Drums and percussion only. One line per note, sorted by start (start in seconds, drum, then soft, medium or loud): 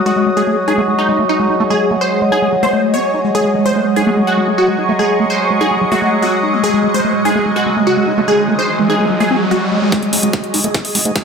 9.92 kick loud
9.92 snare soft
9.92 closed hi-hat medium
10.03 closed hi-hat soft
10.13 open hi-hat loud
10.23 closed hi-hat medium
10.33 kick loud
10.33 snare soft
10.33 closed hi-hat medium
10.44 closed hi-hat soft
10.54 open hi-hat loud
10.64 closed hi-hat medium
10.74 kick loud
10.74 snare medium
10.74 closed hi-hat medium
10.85 open hi-hat medium
10.95 open hi-hat loud
11.05 closed hi-hat medium
11.16 kick loud
11.16 snare soft
11.16 closed hi-hat medium